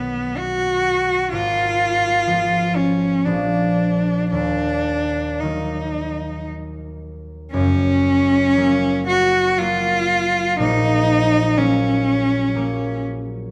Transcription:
Already playing: B1 D#3 F#3 B3
0.38 F#4
1.32 G#1 F4
2.27 F3 G#3 B3
2.76 C#4
3.25 A#1 F3 G#3 B3 D4
4.31 D#2 D4
5.41 D#3 F#3 A#3 D#4
7.52 F#1 F#2 C#4
8.57 F#3 A#3
9.08 F#4
9.58 F#3 A#3 F4
10.59 A#1 A#2 D#4
11.57 F#3 A#3 C#4
12.55 F#3 A#3

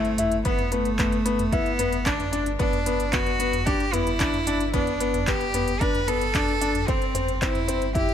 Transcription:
Already playing: G1 A3
0.05 closed hi-hat
0.18 E4, closed hi-hat, mid tom
0.32 closed hi-hat
0.45 G1 B3, kick, closed hi-hat
0.58 closed hi-hat, mid tom
0.72 A3 B3, closed hi-hat
0.85 closed hi-hat
0.99 B3, kick, clap, closed hi-hat, mid tom
1.12 closed hi-hat
1.25 B3, closed hi-hat
1.39 closed hi-hat, mid tom
1.52 B3 E4, kick, closed hi-hat
1.66 closed hi-hat
1.79 B3, closed hi-hat, mid tom
1.92 closed hi-hat
2.06 D4, kick, clap, closed hi-hat
2.20 closed hi-hat, mid tom
2.32 D4, closed hi-hat
2.46 closed hi-hat
2.59 G1 B3 D4, kick, closed hi-hat
2.73 closed hi-hat, mid tom
2.86 B3, closed hi-hat
3.00 closed hi-hat
3.13 B3 F#4, kick, clap, closed hi-hat, mid tom
3.26 closed hi-hat
3.39 B3, closed hi-hat
3.53 closed hi-hat, mid tom
3.66 D4 G4, kick, closed hi-hat
3.80 closed hi-hat
3.93 B3 E4, closed hi-hat, mid tom
4.07 closed hi-hat
4.20 D4, kick, clap, closed hi-hat
4.34 closed hi-hat, mid tom
4.47 D4, closed hi-hat
4.60 closed hi-hat
4.73 B3 D4, kick, closed hi-hat, mid tom
4.87 closed hi-hat
5.00 B3, closed hi-hat
5.14 closed hi-hat, mid tom
5.27 B3 G4, kick, clap, closed hi-hat
5.41 closed hi-hat
5.54 B3, closed hi-hat, mid tom
5.68 closed hi-hat
5.81 D4 B4, kick, closed hi-hat
5.95 closed hi-hat, mid tom
6.07 B3 A4, closed hi-hat
6.21 closed hi-hat
6.35 D4, kick, clap, closed hi-hat, mid tom
6.48 closed hi-hat
6.61 D4, closed hi-hat
6.75 closed hi-hat, mid tom
6.88 G1 C4, kick, closed hi-hat
7.02 closed hi-hat
7.15 C4, closed hi-hat, mid tom
7.28 closed hi-hat
7.42 C4 E4, kick, clap, closed hi-hat
7.55 closed hi-hat, mid tom
7.68 C4, closed hi-hat
7.82 closed hi-hat
7.95 E4 G4, kick, closed hi-hat, mid tom
8.09 closed hi-hat

